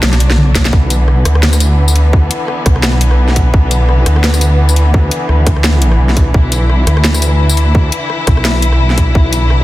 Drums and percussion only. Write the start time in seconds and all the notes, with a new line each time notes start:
0.03 snare, high tom
0.06 high tom
0.09 high tom
0.13 snare, closed hi-hat
0.20 closed hi-hat
0.30 cross-stick, snare
0.38 mid tom
0.55 kick, snare, closed hi-hat, tambourine
0.65 snare
0.73 kick
0.90 closed hi-hat, tambourine
1.08 cross-stick
1.25 cross-stick, closed hi-hat
1.35 cross-stick
1.43 snare
1.53 cross-stick, tambourine
1.60 closed hi-hat, tambourine
1.88 tambourine
1.96 closed hi-hat
2.13 kick
2.31 closed hi-hat
2.48 cross-stick
2.66 kick, cross-stick, closed hi-hat
2.76 cross-stick
2.83 snare
3.01 closed hi-hat
3.11 cross-stick
3.28 snare
3.36 kick, closed hi-hat
3.54 kick
3.71 closed hi-hat, tambourine
3.89 cross-stick
4.06 cross-stick, closed hi-hat
4.16 cross-stick
4.24 snare
4.34 cross-stick, tambourine
4.41 closed hi-hat, tambourine
4.69 tambourine
4.76 closed hi-hat
4.94 kick
5.11 closed hi-hat
5.29 cross-stick
5.47 kick, cross-stick, closed hi-hat
5.57 cross-stick
5.64 snare
5.82 closed hi-hat
5.92 cross-stick
6.09 snare
6.17 kick, closed hi-hat
6.34 kick
6.52 closed hi-hat, tambourine
6.70 cross-stick
6.87 cross-stick, closed hi-hat
6.97 cross-stick
7.04 snare
7.14 cross-stick, tambourine
7.22 closed hi-hat, tambourine
7.50 tambourine
7.57 closed hi-hat
7.75 kick
7.92 closed hi-hat
8.10 cross-stick
8.27 kick, cross-stick, closed hi-hat
8.37 cross-stick
8.45 snare
8.62 closed hi-hat
8.72 cross-stick
8.90 snare
8.98 kick, closed hi-hat
9.15 kick
9.33 closed hi-hat, tambourine
9.50 cross-stick